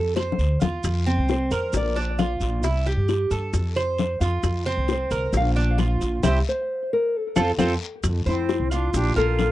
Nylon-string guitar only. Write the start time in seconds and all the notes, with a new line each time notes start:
1.32 C5
1.77 D5
4.91 C5
5.37 F5
6.27 E5
6.49 C5
6.93 A#4
7.17 A4
7.62 G4
8.28 E4
8.73 F4
8.96 G4
9.18 A4